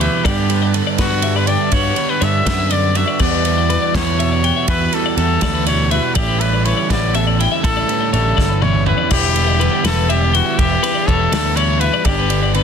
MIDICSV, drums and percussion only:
0, 0, Header, 1, 2, 480
1, 0, Start_track
1, 0, Tempo, 491803
1, 242, Time_signature, 6, 3, 24, 8
1, 12329, End_track
2, 0, Start_track
2, 0, Title_t, "Drums"
2, 9, Note_on_c, 9, 51, 67
2, 107, Note_off_c, 9, 51, 0
2, 244, Note_on_c, 9, 36, 116
2, 250, Note_on_c, 9, 51, 96
2, 342, Note_off_c, 9, 36, 0
2, 347, Note_off_c, 9, 51, 0
2, 484, Note_on_c, 9, 51, 70
2, 582, Note_off_c, 9, 51, 0
2, 724, Note_on_c, 9, 51, 76
2, 821, Note_off_c, 9, 51, 0
2, 960, Note_on_c, 9, 51, 110
2, 962, Note_on_c, 9, 36, 83
2, 968, Note_on_c, 9, 38, 117
2, 1058, Note_off_c, 9, 51, 0
2, 1060, Note_off_c, 9, 36, 0
2, 1065, Note_off_c, 9, 38, 0
2, 1193, Note_on_c, 9, 51, 83
2, 1291, Note_off_c, 9, 51, 0
2, 1436, Note_on_c, 9, 51, 74
2, 1534, Note_off_c, 9, 51, 0
2, 1675, Note_on_c, 9, 51, 102
2, 1683, Note_on_c, 9, 36, 109
2, 1773, Note_off_c, 9, 51, 0
2, 1781, Note_off_c, 9, 36, 0
2, 1915, Note_on_c, 9, 51, 69
2, 2012, Note_off_c, 9, 51, 0
2, 2163, Note_on_c, 9, 51, 68
2, 2260, Note_off_c, 9, 51, 0
2, 2406, Note_on_c, 9, 36, 83
2, 2406, Note_on_c, 9, 51, 107
2, 2413, Note_on_c, 9, 38, 113
2, 2503, Note_off_c, 9, 36, 0
2, 2503, Note_off_c, 9, 51, 0
2, 2511, Note_off_c, 9, 38, 0
2, 2640, Note_on_c, 9, 51, 76
2, 2738, Note_off_c, 9, 51, 0
2, 2882, Note_on_c, 9, 51, 68
2, 2979, Note_off_c, 9, 51, 0
2, 3118, Note_on_c, 9, 49, 91
2, 3124, Note_on_c, 9, 36, 105
2, 3215, Note_off_c, 9, 49, 0
2, 3221, Note_off_c, 9, 36, 0
2, 3366, Note_on_c, 9, 51, 68
2, 3464, Note_off_c, 9, 51, 0
2, 3611, Note_on_c, 9, 51, 62
2, 3708, Note_off_c, 9, 51, 0
2, 3850, Note_on_c, 9, 36, 85
2, 3858, Note_on_c, 9, 51, 102
2, 3866, Note_on_c, 9, 38, 124
2, 3948, Note_off_c, 9, 36, 0
2, 3956, Note_off_c, 9, 51, 0
2, 3963, Note_off_c, 9, 38, 0
2, 4099, Note_on_c, 9, 51, 74
2, 4196, Note_off_c, 9, 51, 0
2, 4332, Note_on_c, 9, 51, 66
2, 4430, Note_off_c, 9, 51, 0
2, 4565, Note_on_c, 9, 51, 97
2, 4569, Note_on_c, 9, 36, 113
2, 4663, Note_off_c, 9, 51, 0
2, 4667, Note_off_c, 9, 36, 0
2, 4807, Note_on_c, 9, 51, 72
2, 4905, Note_off_c, 9, 51, 0
2, 5051, Note_on_c, 9, 51, 68
2, 5149, Note_off_c, 9, 51, 0
2, 5282, Note_on_c, 9, 51, 117
2, 5289, Note_on_c, 9, 38, 118
2, 5290, Note_on_c, 9, 36, 89
2, 5379, Note_off_c, 9, 51, 0
2, 5387, Note_off_c, 9, 36, 0
2, 5387, Note_off_c, 9, 38, 0
2, 5529, Note_on_c, 9, 51, 83
2, 5626, Note_off_c, 9, 51, 0
2, 5770, Note_on_c, 9, 51, 70
2, 5868, Note_off_c, 9, 51, 0
2, 6004, Note_on_c, 9, 51, 97
2, 6012, Note_on_c, 9, 36, 119
2, 6102, Note_off_c, 9, 51, 0
2, 6110, Note_off_c, 9, 36, 0
2, 6255, Note_on_c, 9, 51, 73
2, 6352, Note_off_c, 9, 51, 0
2, 6495, Note_on_c, 9, 51, 74
2, 6592, Note_off_c, 9, 51, 0
2, 6736, Note_on_c, 9, 36, 82
2, 6739, Note_on_c, 9, 51, 103
2, 6746, Note_on_c, 9, 38, 120
2, 6834, Note_off_c, 9, 36, 0
2, 6836, Note_off_c, 9, 51, 0
2, 6844, Note_off_c, 9, 38, 0
2, 6973, Note_on_c, 9, 51, 71
2, 7071, Note_off_c, 9, 51, 0
2, 7227, Note_on_c, 9, 51, 68
2, 7325, Note_off_c, 9, 51, 0
2, 7458, Note_on_c, 9, 36, 114
2, 7461, Note_on_c, 9, 51, 92
2, 7555, Note_off_c, 9, 36, 0
2, 7558, Note_off_c, 9, 51, 0
2, 7701, Note_on_c, 9, 51, 67
2, 7799, Note_off_c, 9, 51, 0
2, 7941, Note_on_c, 9, 51, 58
2, 8038, Note_off_c, 9, 51, 0
2, 8178, Note_on_c, 9, 36, 89
2, 8189, Note_on_c, 9, 38, 69
2, 8276, Note_off_c, 9, 36, 0
2, 8287, Note_off_c, 9, 38, 0
2, 8415, Note_on_c, 9, 48, 82
2, 8512, Note_off_c, 9, 48, 0
2, 8540, Note_on_c, 9, 47, 62
2, 8637, Note_off_c, 9, 47, 0
2, 8652, Note_on_c, 9, 45, 88
2, 8749, Note_off_c, 9, 45, 0
2, 8887, Note_on_c, 9, 49, 127
2, 8894, Note_on_c, 9, 36, 103
2, 8984, Note_off_c, 9, 49, 0
2, 8992, Note_off_c, 9, 36, 0
2, 9132, Note_on_c, 9, 51, 80
2, 9230, Note_off_c, 9, 51, 0
2, 9379, Note_on_c, 9, 51, 76
2, 9476, Note_off_c, 9, 51, 0
2, 9610, Note_on_c, 9, 51, 112
2, 9618, Note_on_c, 9, 38, 123
2, 9707, Note_off_c, 9, 51, 0
2, 9715, Note_off_c, 9, 38, 0
2, 9856, Note_on_c, 9, 51, 84
2, 9954, Note_off_c, 9, 51, 0
2, 10097, Note_on_c, 9, 51, 75
2, 10195, Note_off_c, 9, 51, 0
2, 10334, Note_on_c, 9, 36, 119
2, 10334, Note_on_c, 9, 51, 101
2, 10431, Note_off_c, 9, 36, 0
2, 10432, Note_off_c, 9, 51, 0
2, 10576, Note_on_c, 9, 51, 78
2, 10673, Note_off_c, 9, 51, 0
2, 10814, Note_on_c, 9, 36, 79
2, 10819, Note_on_c, 9, 51, 65
2, 10911, Note_off_c, 9, 36, 0
2, 10917, Note_off_c, 9, 51, 0
2, 11054, Note_on_c, 9, 51, 112
2, 11062, Note_on_c, 9, 38, 127
2, 11151, Note_off_c, 9, 51, 0
2, 11159, Note_off_c, 9, 38, 0
2, 11291, Note_on_c, 9, 51, 85
2, 11389, Note_off_c, 9, 51, 0
2, 11525, Note_on_c, 9, 51, 66
2, 11623, Note_off_c, 9, 51, 0
2, 11758, Note_on_c, 9, 51, 102
2, 11765, Note_on_c, 9, 36, 115
2, 11856, Note_off_c, 9, 51, 0
2, 11863, Note_off_c, 9, 36, 0
2, 12004, Note_on_c, 9, 51, 76
2, 12102, Note_off_c, 9, 51, 0
2, 12243, Note_on_c, 9, 51, 76
2, 12329, Note_off_c, 9, 51, 0
2, 12329, End_track
0, 0, End_of_file